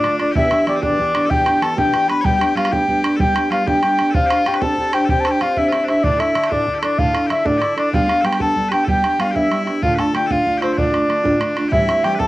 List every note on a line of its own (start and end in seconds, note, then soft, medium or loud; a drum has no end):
0.00 0.20 D3 soft
0.00 0.32 D4 medium
0.00 0.18 D5 medium
0.04 0.20 A3 medium
0.04 0.19 D4 medium
0.04 0.18 F4 medium
0.04 bodhran soft
0.19 0.36 D3 soft
0.19 0.36 A3 soft
0.19 0.36 D4 soft
0.19 0.35 F4 soft
0.19 0.35 D5 medium
0.19 bodhran soft
0.32 0.51 E2 medium
0.32 0.52 B2 medium
0.32 0.76 E4 medium
0.32 0.36 G4 medium
0.32 0.65 E5 loud
0.32 bodhran medium
0.36 0.51 E3 medium
0.36 0.51 B3 medium
0.36 0.50 D4 medium
0.36 0.49 G4 medium
0.51 0.65 E3 soft
0.51 0.66 B3 soft
0.51 0.67 D4 soft
0.51 bodhran medium
0.66 0.82 E3 medium
0.66 0.82 B3 medium
0.66 0.81 D4 medium
0.66 0.81 G4 medium
0.66 0.82 D5 medium
0.66 bodhran medium
0.76 0.82 C4 medium
0.82 0.99 E2 soft
0.82 0.99 B2 soft
0.82 0.97 E3 soft
0.82 0.98 B3 medium
0.82 1.26 D4 medium
0.82 0.99 D4 soft
0.82 0.98 G4 medium
0.82 1.32 D5 medium
0.82 bodhran medium
0.98 1.14 E3 medium
0.98 1.15 B3 medium
0.98 1.13 D4 medium
0.98 1.13 G4 medium
0.98 bodhran soft
1.14 1.29 E3 soft
1.14 1.30 B3 soft
1.14 1.30 D4 medium
1.14 1.30 G4 medium
1.14 bodhran medium
1.26 1.46 E2 medium
1.26 1.62 G4 medium
1.26 1.30 A4 medium
1.30 1.46 B2 medium
1.30 1.46 E3 medium
1.30 1.46 B3 medium
1.30 1.46 D4 medium
1.30 1.44 G4 medium
1.30 1.64 G5 loud
1.30 bodhran medium
1.46 1.60 E3 soft
1.46 1.61 B3 soft
1.46 1.62 D4 medium
1.46 1.62 G4 medium
1.46 bodhran medium
1.61 1.77 E3 medium
1.61 1.76 B3 medium
1.61 1.76 D4 medium
1.61 1.75 G4 medium
1.61 1.78 A4 medium
1.61 1.77 A5 medium
1.61 bodhran medium
1.77 1.94 E2 medium
1.77 1.94 B2 medium
1.77 1.91 E3 medium
1.77 1.92 B3 medium
1.77 1.93 D4 medium
1.77 1.93 G4 medium
1.77 2.09 G4 medium
1.77 2.07 G5 loud
1.77 bodhran medium
1.92 2.09 E3 medium
1.92 2.09 B3 medium
1.92 2.08 D4 medium
1.92 2.07 G4 medium
1.92 bodhran medium
2.09 2.23 E3 soft
2.09 2.23 B3 soft
2.09 2.23 D4 soft
2.09 2.21 B4 medium
2.09 2.26 B5 medium
2.09 bodhran medium
2.21 2.40 G3 medium
2.21 2.40 B3 medium
2.21 2.39 D4 medium
2.21 2.25 C#5 medium
2.21 2.56 G5 loud
2.21 bodhran medium
2.25 2.35 G4 medium
2.25 2.38 G4 medium
2.35 2.46 G4 medium
2.35 2.56 G4 medium
2.41 2.55 B3 soft
2.41 2.55 D4 soft
2.41 bodhran medium
2.46 2.56 G4 medium
2.55 2.72 G3 medium
2.55 2.71 B3 medium
2.55 2.70 D4 medium
2.55 2.72 F4 medium
2.55 2.70 G4 medium
2.55 2.74 F5 medium
2.55 bodhran medium
2.65 bodhran medium
2.71 2.86 G3 soft
2.71 2.86 B3 medium
2.71 2.87 D4 medium
2.71 2.87 G4 medium
2.71 3.16 G4 medium
2.71 2.99 G5 medium
2.71 bodhran medium
2.87 3.03 G3 soft
2.87 3.04 B3 medium
2.87 3.03 D4 medium
2.87 3.02 G4 medium
2.87 bodhran soft
3.03 3.19 B3 soft
3.03 3.19 D4 soft
3.03 3.19 G4 medium
3.03 bodhran medium
3.16 3.35 G3 medium
3.16 3.36 B3 medium
3.16 3.35 D4 medium
3.16 3.51 G4 medium
3.16 3.20 A4 medium
3.16 bodhran medium
3.21 3.33 G4 medium
3.21 3.50 G5 loud
3.34 3.50 B3 soft
3.34 3.51 D4 soft
3.34 3.51 G4 medium
3.34 bodhran medium
3.50 3.66 G3 medium
3.50 3.66 B3 medium
3.50 3.66 D4 medium
3.50 3.67 F4 medium
3.50 3.65 G4 medium
3.50 3.66 F5 medium
3.50 bodhran medium
3.66 3.81 G3 medium
3.66 3.82 B3 medium
3.66 3.83 D4 medium
3.66 3.82 G4 medium
3.66 4.11 G4 medium
3.66 4.12 G5 loud
3.66 bodhran medium
3.82 3.98 G3 medium
3.82 3.99 B3 medium
3.82 3.97 G4 medium
3.82 bodhran medium
3.98 4.14 B3 soft
3.98 4.14 D4 soft
3.98 4.14 G4 soft
3.98 bodhran medium
4.11 4.30 C4 medium
4.11 4.26 F4 medium
4.11 4.14 A4 medium
4.11 bodhran medium
4.15 4.30 D4 medium
4.15 4.30 G4 medium
4.15 4.28 C5 medium
4.15 4.49 F5 loud
4.26 4.55 F4 medium
4.26 4.30 G4 medium
4.26 4.46 C5 medium
4.31 4.45 D4 soft
4.31 bodhran medium
4.46 4.62 C4 medium
4.46 4.62 D4 medium
4.46 4.62 G4 medium
4.46 4.61 C5 medium
4.46 4.65 G5 medium
4.46 bodhran medium
4.54 4.61 B4 medium
4.54 bodhran medium
4.61 4.76 C4 medium
4.61 4.77 D4 medium
4.61 4.78 G4 medium
4.61 4.93 A4 medium
4.61 4.78 C5 medium
4.61 4.96 A5 medium
4.61 bodhran medium
4.78 4.93 C4 soft
4.78 4.94 D4 medium
4.78 4.93 G4 medium
4.78 4.92 C5 medium
4.78 bodhran soft
4.93 5.09 D4 soft
4.93 5.05 G4 medium
4.93 5.09 G4 soft
4.93 5.09 C5 medium
4.93 5.10 G5 medium
4.93 bodhran medium
5.05 5.25 C4 medium
5.05 5.09 A4 medium
5.05 bodhran medium
5.09 5.25 D4 medium
5.09 5.27 G4 medium
5.09 5.26 G4 medium
5.09 5.24 C5 medium
5.09 5.22 G5 medium
5.20 5.33 A5 medium
5.25 5.41 D4 soft
5.25 5.41 G4 soft
5.25 5.30 A4 medium
5.25 5.41 C5 soft
5.25 bodhran medium
5.30 5.41 G4 medium
5.30 5.43 G5 medium
5.41 5.57 C4 medium
5.41 5.57 D4 medium
5.41 5.58 F4 medium
5.41 5.56 G4 medium
5.41 5.56 C5 medium
5.41 5.59 F5 medium
5.41 bodhran medium
5.57 5.71 C4 medium
5.57 5.72 D4 medium
5.57 5.69 E4 medium
5.57 5.73 G4 medium
5.57 5.72 C5 medium
5.57 5.88 E5 medium
5.57 bodhran medium
5.69 5.88 C4 soft
5.69 5.84 E4 medium
5.69 5.72 F4 soft
5.69 bodhran medium
5.73 5.88 D4 medium
5.73 5.88 G4 soft
5.73 5.87 C5 medium
5.84 5.90 D4 medium
5.84 6.04 C5 soft
5.84 bodhran soft
5.89 6.04 D4 soft
5.89 6.04 E4 medium
5.89 6.04 G4 soft
5.89 6.05 E5 medium
6.03 6.20 D2 medium
6.03 6.20 A2 medium
6.03 6.20 D3 medium
6.03 6.19 D4 medium
6.03 6.20 D4 medium
6.03 6.19 E4 medium
6.03 6.18 A4 medium
6.03 6.22 D5 loud
6.03 bodhran medium
6.19 6.33 D3 soft
6.19 6.34 D4 soft
6.19 6.47 E4 medium
6.19 6.35 E4 soft
6.19 6.35 A4 medium
6.19 6.54 E5 medium
6.19 bodhran medium
6.35 6.51 D3 medium
6.35 6.50 D4 medium
6.35 6.50 E4 medium
6.35 6.49 A4 medium
6.35 bodhran medium
6.44 6.51 G4 medium
6.44 bodhran medium
6.51 6.67 D2 medium
6.51 6.67 A2 soft
6.51 6.66 D3 medium
6.51 6.75 D4 medium
6.51 6.67 D4 medium
6.51 6.67 E4 medium
6.51 6.67 A4 soft
6.51 6.83 D5 medium
6.51 bodhran medium
6.67 6.83 D3 medium
6.67 6.83 D4 medium
6.67 6.82 E4 medium
6.67 6.81 A4 medium
6.67 bodhran soft
6.75 6.79 G4 medium
6.79 6.99 D4 medium
6.79 6.83 E4 medium
6.79 6.98 A4 medium
6.79 bodhran medium
6.83 6.98 D3 soft
6.83 6.98 D4 soft
6.83 6.98 E4 soft
6.83 7.00 D5 medium
6.98 7.14 D2 medium
6.98 7.14 A2 medium
6.98 7.15 D3 medium
6.98 7.14 D4 medium
6.98 7.13 E4 medium
6.98 7.27 F4 medium
6.98 7.12 A4 medium
6.98 7.30 F5 medium
6.98 bodhran medium
7.13 7.28 D3 soft
7.13 7.29 D4 medium
7.13 7.30 E4 soft
7.13 7.30 A4 medium
7.13 bodhran medium
7.27 7.45 D3 medium
7.27 7.44 D4 medium
7.27 7.46 E4 medium
7.27 7.30 G4 medium
7.27 7.48 E5 medium
7.27 bodhran medium
7.31 7.44 E4 medium
7.31 7.44 A4 medium
7.45 7.62 D2 soft
7.45 7.62 A2 medium
7.45 7.59 D3 medium
7.45 7.60 D4 medium
7.45 7.58 D4 medium
7.45 7.61 E4 medium
7.45 7.61 A4 medium
7.45 7.77 D5 medium
7.45 bodhran medium
7.58 7.77 D3 soft
7.58 7.77 D4 medium
7.58 7.79 E4 medium
7.58 7.62 G4 medium
7.58 bodhran medium
7.63 7.76 E4 medium
7.63 7.75 A4 medium
7.76 7.92 D3 soft
7.76 7.93 D4 soft
7.76 7.94 D4 medium
7.76 7.93 E4 soft
7.76 7.93 A4 soft
7.76 7.92 D5 medium
7.76 bodhran medium
7.93 8.09 G3 medium
7.93 8.09 B3 medium
7.93 8.08 D4 medium
7.93 8.21 F4 medium
7.93 8.06 G4 medium
7.93 8.27 F5 loud
7.93 bodhran medium
8.08 8.23 B3 soft
8.08 8.24 D4 medium
8.08 8.24 G4 medium
8.08 bodhran medium
8.21 8.40 G3 medium
8.21 8.39 B3 medium
8.21 8.39 D4 medium
8.21 8.41 G4 medium
8.21 8.25 A4 medium
8.21 bodhran medium
8.26 8.38 G4 medium
8.26 8.41 G5 medium
8.33 bodhran medium
8.39 8.54 G3 soft
8.39 8.55 B3 medium
8.39 8.56 D4 soft
8.39 8.56 G4 medium
8.39 8.69 A4 medium
8.39 8.70 A5 medium
8.39 bodhran medium
8.55 8.72 G3 soft
8.55 8.72 B3 medium
8.55 8.71 D4 medium
8.55 8.70 G4 medium
8.55 bodhran soft
8.69 8.87 D4 soft
8.69 8.87 G4 medium
8.69 8.84 G4 medium
8.69 8.73 B4 medium
8.69 8.87 G5 medium
8.69 bodhran medium
8.74 8.87 B3 medium
8.84 9.03 G3 medium
8.84 9.04 B3 medium
8.84 9.03 D4 medium
8.84 8.88 A4 medium
8.84 bodhran medium
8.88 9.20 G4 medium
8.88 9.01 G4 medium
8.88 9.22 G5 medium
9.03 9.18 B3 soft
9.03 9.19 D4 soft
9.03 9.19 G4 medium
9.03 bodhran medium
9.18 9.35 G3 medium
9.18 9.34 B3 medium
9.18 9.33 D4 medium
9.18 9.31 F4 medium
9.18 9.33 G4 medium
9.18 9.38 F5 medium
9.18 bodhran medium
9.31 9.49 B3 medium
9.31 9.51 D4 medium
9.31 9.35 G4 medium
9.31 9.50 G4 medium
9.35 9.49 G3 medium
9.35 9.82 E4 medium
9.35 9.62 E5 medium
9.35 bodhran medium
9.50 9.66 G3 medium
9.50 9.67 B3 medium
9.50 9.66 D4 medium
9.50 9.65 G4 medium
9.50 bodhran medium
9.66 9.82 B3 soft
9.66 9.82 D4 soft
9.66 9.82 G4 soft
9.66 bodhran soft
9.82 9.98 D2 medium
9.82 9.98 A2 medium
9.82 9.98 D3 medium
9.82 9.98 A3 medium
9.82 9.97 D4 medium
9.82 9.95 F4 medium
9.82 9.96 F4 medium
9.82 10.01 F5 medium
9.82 bodhran medium
9.95 10.14 D4 medium
9.95 10.14 F4 medium
9.95 10.15 A4 medium
9.95 9.99 B4 medium
9.95 bodhran medium
9.99 10.12 D3 soft
9.99 10.13 A3 soft
9.99 10.15 A5 medium
10.13 10.29 D3 medium
10.13 10.29 A3 medium
10.13 10.29 D4 medium
10.13 10.28 F4 medium
10.13 10.27 G4 medium
10.13 10.33 G5 medium
10.13 bodhran medium
10.27 10.43 D3 soft
10.27 10.44 A3 medium
10.27 10.45 D4 medium
10.27 10.46 F4 medium
10.27 10.31 A4 medium
10.27 bodhran medium
10.31 10.46 D2 medium
10.31 10.46 A2 soft
10.31 10.58 F4 medium
10.31 10.62 F5 medium
10.44 10.61 D3 soft
10.44 10.61 A3 medium
10.44 10.61 D4 medium
10.44 10.60 F4 medium
10.44 bodhran soft
10.58 10.73 C4 medium
10.58 10.77 F4 medium
10.58 10.62 G4 medium
10.62 10.76 D3 medium
10.62 10.77 A3 soft
10.62 10.77 D4 soft
10.62 10.80 C5 medium
10.62 bodhran medium
10.73 10.77 E4 medium
10.77 10.93 D2 medium
10.77 10.93 A2 medium
10.77 10.93 D3 medium
10.77 10.93 A3 medium
10.77 11.69 D4 medium
10.77 10.92 D4 medium
10.77 10.91 F4 medium
10.77 11.57 D5 medium
10.77 bodhran medium
10.92 11.06 D3 soft
10.92 11.07 A3 soft
10.92 11.08 D4 soft
10.92 11.09 F4 medium
10.92 bodhran medium
11.07 11.24 D3 medium
11.07 11.23 A3 medium
11.07 11.23 D4 medium
11.07 11.22 F4 medium
11.07 bodhran soft
11.24 11.41 D2 medium
11.24 11.41 A2 medium
11.24 11.38 D3 medium
11.24 11.39 A3 medium
11.24 11.40 D4 medium
11.24 11.40 F4 medium
11.24 bodhran medium
11.39 11.56 D3 soft
11.39 11.56 A3 medium
11.39 11.55 D4 medium
11.39 11.54 F4 medium
11.39 bodhran medium
11.55 11.71 D3 soft
11.55 11.71 A3 soft
11.55 11.72 D4 soft
11.55 11.72 F4 medium
11.55 bodhran soft
11.69 11.87 A2 medium
11.69 11.88 E3 medium
11.69 11.88 G3 medium
11.69 11.87 C4 medium
11.69 12.28 E4 medium
11.69 12.04 E4 medium
11.69 11.72 G4 medium
11.69 11.86 G4 medium
11.69 12.06 E5 loud
11.69 bodhran medium
11.87 12.03 G3 soft
11.87 12.03 C4 soft
11.87 12.03 G4 medium
11.87 bodhran medium
12.03 12.19 E3 medium
12.03 12.18 G3 medium
12.03 12.18 C4 medium
12.03 12.28 G4 medium
12.03 12.15 G4 medium
12.03 12.17 G4 medium
12.03 12.19 G5 medium
12.03 bodhran medium
12.15 12.28 G4 medium
12.15 12.19 B4 medium
12.19 12.28 A2 soft
12.19 12.28 E3 soft
12.19 12.28 G3 medium
12.19 12.28 C4 medium
12.19 12.28 A4 medium
12.19 12.28 A5 medium
12.19 bodhran medium